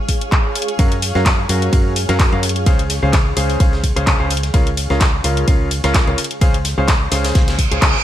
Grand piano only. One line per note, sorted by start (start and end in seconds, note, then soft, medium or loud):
0.79 0.92 F#3 medium
0.79 0.92 C#4 medium
0.79 0.92 F#4 medium
0.79 0.92 A#4 medium
0.79 0.92 F5 loud
1.15 1.26 F#3 medium
1.15 1.26 C#4 medium
1.15 1.26 F#4 medium
1.15 1.26 A#4 medium
1.15 1.26 F5 medium
1.49 1.70 F#3 medium
1.49 1.70 C#4 medium
1.49 1.70 F#4 medium
1.49 1.70 A#4 medium
1.49 1.70 F5 medium
1.73 1.93 F#3 medium
1.73 1.93 C#4 medium
1.73 1.92 F#4 medium
1.73 1.92 A#4 medium
1.73 1.93 F5 medium
2.09 2.29 F#3 loud
2.09 2.29 C#4 medium
2.09 2.29 F#4 medium
2.09 2.29 A#4 medium
2.09 2.29 F5 loud
2.32 2.43 F#3 medium
2.32 2.43 C#4 medium
2.32 2.43 F#4 medium
2.32 2.43 A#4 medium
2.32 2.43 F5 medium
2.66 2.80 C#3 medium
2.66 2.80 C#4 medium
2.66 2.80 G#4 medium
2.66 2.80 C5 medium
2.66 2.80 F5 loud
3.03 3.14 C#3 medium
3.03 3.14 C#4 medium
3.03 3.14 G#4 medium
3.03 3.14 C5 medium
3.03 3.14 F5 medium
3.37 3.58 C#3 medium
3.37 3.58 C#4 medium
3.37 3.58 G#4 medium
3.37 3.58 C5 medium
3.37 3.58 F5 medium
3.60 3.80 C#3 medium
3.60 3.80 C#4 medium
3.60 3.80 G#4 medium
3.60 3.80 C5 medium
3.60 3.80 F5 medium
3.96 4.17 C#3 medium
3.96 4.17 C#4 medium
3.96 4.17 G#4 medium
3.96 4.17 C5 medium
3.96 4.17 F5 loud
4.20 4.31 C#3 medium
4.20 4.31 C#4 medium
4.20 4.31 G#4 medium
4.20 4.31 C5 medium
4.20 4.31 F5 medium
4.54 4.67 C#3 medium
4.54 4.67 C#4 medium
4.54 4.67 F4 medium
4.54 4.67 A#4 medium
4.54 4.67 F5 loud
4.90 5.01 C#3 medium
4.90 5.01 C#4 medium
4.90 5.01 F4 medium
4.90 5.01 A#4 medium
4.90 5.01 F5 medium
5.24 5.45 C#3 medium
5.24 5.45 C#4 medium
5.24 5.45 F4 medium
5.24 5.45 A#4 medium
5.24 5.45 F5 medium
5.48 5.67 C#3 medium
5.48 5.67 C#4 medium
5.48 5.67 F4 medium
5.48 5.67 A#4 medium
5.48 5.67 F5 medium
5.84 6.04 C#3 loud
5.84 6.04 C#4 medium
5.84 6.04 F4 medium
5.84 6.04 A#4 medium
5.84 6.04 F5 loud
6.07 6.17 C#3 medium
6.07 6.17 C#4 medium
6.07 6.17 F4 medium
6.07 6.17 A#4 medium
6.07 6.17 F5 medium
6.41 6.55 C#3 medium
6.41 6.55 C#4 medium
6.41 6.55 G#4 medium
6.41 6.55 C5 medium
6.41 6.55 F5 loud
6.78 6.89 C#3 medium
6.78 6.89 C#4 medium
6.78 6.89 G#4 medium
6.78 6.89 C5 medium
6.78 6.89 F5 medium
7.12 7.33 C#3 medium
7.12 7.33 C#4 medium
7.12 7.33 G#4 medium
7.12 7.33 C5 medium
7.12 7.33 F5 medium
7.35 7.55 C#3 medium
7.35 7.55 C#4 medium
7.35 7.55 G#4 medium
7.35 7.55 C5 medium
7.35 7.55 F5 medium
7.71 7.80 C#3 medium
7.71 7.80 C#4 medium
7.71 7.80 G#4 medium
7.71 7.80 C5 medium
7.71 7.80 F5 medium
7.82 7.95 C#3 medium
7.82 7.95 C#4 medium
7.82 7.95 G#4 medium
7.82 7.95 C5 medium
7.82 7.95 G#5 medium